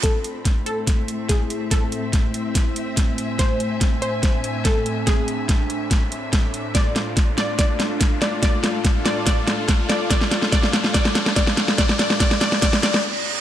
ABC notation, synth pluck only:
X:1
M:4/4
L:1/16
Q:1/4=143
K:Am
V:1 name="Synth pluck"
A6 A6 ^G3 z | A16 | c6 c6 A3 z | ^G16 |
d6 d2 d6 d2 | d6 d2 d6 d2 | d4 d4 d4 d4 | d2 d2 d2 d2 d2 d2 z4 |]